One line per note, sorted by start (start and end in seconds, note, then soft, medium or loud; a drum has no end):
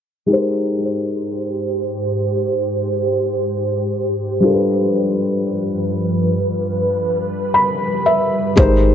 0.26 4.40 G#2 medium
0.26 4.38 G#3 medium
0.26 4.39 D#4 medium
0.26 4.40 G4 medium
0.26 4.40 C5 medium
0.31 4.40 A#4 medium
0.31 4.41 C5 medium
4.40 8.53 G2 medium
4.40 6.48 F3 medium
4.40 8.52 G3 medium
4.40 8.53 D4 medium
4.40 8.53 F4 medium
4.40 8.53 B4 medium
4.45 8.54 A4 medium
4.45 4.52 A#4 medium
4.54 8.58 B4 medium
6.51 8.55 G3 medium
7.54 8.02 B5 medium
8.06 8.54 E5 medium
8.56 8.95 G#1 loud
8.56 8.95 G#3 medium
8.56 8.95 C4 medium
8.56 8.95 D#4 medium
8.56 8.95 G4 medium
8.56 8.95 A#4 medium
8.56 8.95 C5 medium
8.56 kick loud
8.56 closed hi-hat medium